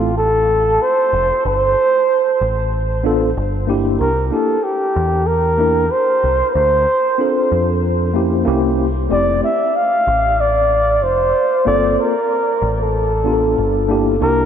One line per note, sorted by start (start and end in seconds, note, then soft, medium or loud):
0.00 0.77 A1 medium
0.00 0.17 F4 medium
0.00 0.10 A4 medium
0.18 0.83 A4 loud
0.82 1.45 C5 loud
1.13 1.30 F1 medium
1.45 1.74 G1 loud
1.45 2.69 C5 loud
2.41 3.33 A1 medium
3.04 3.28 B3 medium
3.04 3.28 D4 medium
3.04 3.29 F4 medium
3.04 3.30 A4 medium
3.37 3.97 G1 medium
3.67 4.07 A#3 medium
3.67 4.08 D4 medium
3.67 4.08 E4 medium
3.67 4.08 G4 medium
4.00 4.30 C2 medium
4.00 4.28 A#4 loud
4.28 4.56 A#3 medium
4.28 4.56 D4 medium
4.28 4.34 A#4 medium
4.32 4.56 E4 medium
4.32 4.57 G4 medium
4.32 4.65 A4 medium
4.64 5.28 G4 medium
4.96 5.88 E2 medium
5.27 5.93 A#4 loud
5.58 5.83 A#3 medium
5.58 5.83 D4 medium
5.58 5.84 E4 medium
5.58 5.84 A#4 medium
5.91 6.50 C5 loud
6.24 6.41 C2 medium
6.50 6.55 B4 medium
6.50 7.82 C5 loud
6.55 6.84 D2 medium
7.18 8.09 C4 medium
7.18 8.10 D4 medium
7.18 8.10 F4 medium
7.18 8.11 A4 medium
7.52 8.43 F2 medium
8.13 8.44 A#3 medium
8.13 8.45 C#4 medium
8.13 8.45 E4 medium
8.13 8.46 G4 medium
8.45 9.07 C2 medium
8.45 8.85 A#3 medium
8.45 8.86 C#4 medium
8.45 8.86 E4 medium
8.45 8.87 G4 medium
9.09 9.40 F1 loud
9.09 9.49 A3 medium
9.09 9.50 C4 medium
9.09 9.50 E4 medium
9.09 9.51 G4 medium
9.09 9.41 D5 loud
9.44 9.77 E5 loud
9.76 10.42 F5 loud
10.07 11.03 A1 medium
10.40 11.05 D5 loud
11.03 11.32 F1 medium
11.03 11.67 C5 medium
11.65 11.96 G1 loud
11.65 12.13 A#3 medium
11.65 12.13 C4 medium
11.65 12.13 F4 medium
11.65 12.14 A4 medium
11.65 12.02 D5 loud
12.00 12.81 A#4 medium
12.62 13.54 A1 medium
12.82 13.86 A4 medium
13.24 14.15 B3 medium
13.24 13.88 D4 medium
13.24 14.16 F4 medium
13.24 13.34 G4 medium
13.33 14.20 A4 medium
13.58 14.18 G1 medium
13.88 14.13 A#3 medium
13.88 14.13 D4 medium
13.88 14.14 E4 medium
13.88 14.14 G4 medium
14.20 14.46 C2 medium
14.20 14.46 A#3 medium
14.20 14.46 D4 medium
14.20 14.46 E4 medium
14.20 14.46 G4 medium
14.20 14.46 A#4 loud